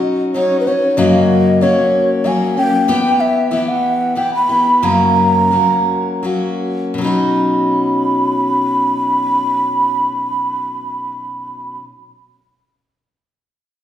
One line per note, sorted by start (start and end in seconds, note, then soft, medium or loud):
0.00 0.33 F#3 medium
0.00 0.34 C#4 soft
0.00 0.35 D#4 medium
0.00 0.36 F#4 medium
0.34 0.66 F#3 soft
0.34 0.67 C#4 medium
0.34 0.67 D#4 medium
0.34 0.66 F#4 medium
0.34 0.58 C#5 medium
0.60 0.69 B4 soft
0.67 0.98 C#4 soft
0.67 0.98 D#4 soft
0.67 0.97 F#4 soft
0.67 0.91 C#5 medium
0.91 0.99 C#5 medium
0.97 1.61 F#2 medium
0.97 1.61 C#3 medium
0.97 1.60 F#3 medium
0.97 1.61 A#3 medium
0.97 1.62 C#4 medium
0.97 1.61 F#4 medium
0.97 1.64 D#5 medium
1.61 2.23 F#3 medium
1.61 2.24 A#3 medium
1.61 2.25 C#4 medium
1.61 2.25 F#4 medium
1.61 2.28 C#5 medium
2.24 2.56 F#3 medium
2.24 2.56 A#3 medium
2.24 2.56 C#4 medium
2.24 2.57 F#4 medium
2.24 2.57 G#5 medium
2.57 2.88 F#3 soft
2.57 2.88 A#3 soft
2.57 2.88 C#4 soft
2.57 3.22 G5 medium
2.88 3.50 E3 medium
2.88 3.50 B3 medium
2.88 3.51 E4 medium
2.88 3.52 G4 medium
3.20 3.52 E5 medium
3.51 4.14 E3 soft
3.51 4.15 B3 soft
3.51 4.16 E4 medium
3.51 4.16 G4 medium
3.51 3.70 E5 medium
3.69 4.19 F#5 medium
4.15 4.49 E3 soft
4.15 4.49 B3 soft
4.15 4.49 E4 medium
4.15 4.48 G4 soft
4.15 4.33 G5 medium
4.35 4.86 B5 medium
4.49 4.83 B3 soft
4.49 4.83 E4 soft
4.49 4.83 G4 soft
4.82 5.51 F#2 medium
4.82 5.51 C#3 medium
4.82 5.50 F#3 medium
4.82 5.51 A#3 medium
4.82 5.52 C#4 medium
4.82 5.52 F#4 medium
4.82 6.24 A#5 medium
5.51 6.21 F#3 soft
5.51 6.23 A#3 soft
5.51 6.24 C#4 medium
5.51 6.24 F#4 soft
6.23 6.97 F#3 soft
6.23 6.99 A#3 medium
6.23 7.00 C#4 medium
6.23 7.00 F#4 medium
6.94 11.77 B2 medium
6.98 11.82 F#3 medium
6.98 11.85 C#4 medium
6.98 11.79 B5 medium
7.04 11.87 D#4 medium
7.04 11.90 F#4 medium